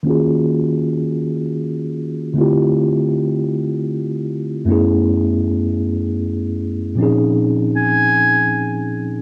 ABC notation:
X:1
M:6/8
L:1/8
Q:3/8=52
K:Gblyd
V:1 name="Oboe"
z6 | z6 | z6 | z2 a3 z |]
V:2 name="Tine electric piano"
[E,B,DFGA]6 | [=D,=A,C=EF=G]6 | [G,,=A,_CD_F_A]6 | [B,,F,CDEA]6 |]